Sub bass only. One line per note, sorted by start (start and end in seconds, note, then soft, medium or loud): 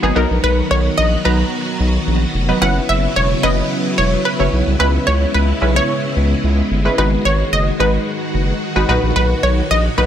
0.03 0.12 G#1 medium
0.16 0.26 B1 medium
0.30 0.39 A#1 medium
0.43 0.62 B1 loud
0.71 0.89 B1 loud
0.98 1.16 A#1 medium
1.25 1.43 B1 medium
1.80 1.98 B1 loud
2.07 2.25 A#1 medium
2.34 2.52 F1 medium
2.61 2.80 F#1 loud
2.89 3.07 F#1 loud
3.16 3.34 E1 loud
3.43 3.62 F#1 loud
3.98 4.16 E1 medium
4.40 4.48 F#1 medium
4.53 4.62 B1 loud
4.67 4.76 C2 loud
4.80 4.98 C#2 loud
5.07 5.25 C#2 loud
5.34 5.53 C#2 loud
5.62 5.80 B1 loud
6.16 6.34 C#2 medium
6.43 6.62 C#2 loud
6.71 6.89 G1 medium
6.98 7.16 G#1 loud
7.25 7.43 G#1 loud
7.52 7.71 F#1 loud
7.79 7.98 G#1 medium
8.34 8.52 F#1 medium
8.76 8.84 G#1 medium
8.89 8.98 B1 medium
9.03 9.12 A#1 medium
9.16 9.34 B1 loud
9.43 9.61 B1 loud
9.70 9.89 A#1 medium
9.97 10.06 B1 medium